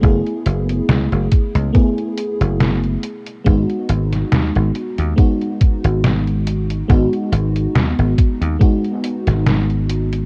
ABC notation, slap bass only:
X:1
M:4/4
L:1/16
Q:"Swing 16ths" 1/4=70
K:G#phr
V:1 name="Slap bass" clef=bass
F,,, z F,,,2 C,, F,,, z C,, z3 F,,,3 z2 | G,,, z G,,,2 D,, G,,, z D,, z3 G,,,4- G,,, | G,,, z G,,,2 D,, G,,, z D,, z3 G,,,4- G,,, |]